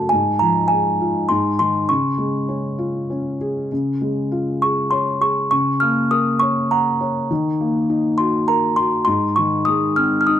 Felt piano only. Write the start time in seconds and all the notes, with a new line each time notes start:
Already playing: F#2 C#3 A3 C#4 F#4
0.13 G#2
0.42 F3
0.72 G#3
1.01 F4
1.30 G#2
1.60 D#3
1.89 C#3
2.18 G#3
2.49 C#4
2.78 F4
3.10 C#4
3.41 G#4
3.72 C#3
4.01 G#3
4.32 F4
4.63 G#4
4.92 C#5
5.21 G#4
5.51 C#3
5.82 A#3
6.11 A#4
6.42 C#5
6.71 F#5
7.01 C#5
7.31 D#3
7.60 A#3
7.89 D#4
8.19 F#4
8.49 A#4
8.78 F#4
9.07 G#2
9.38 D#3
9.68 G#3
9.98 C4
10.28 D#4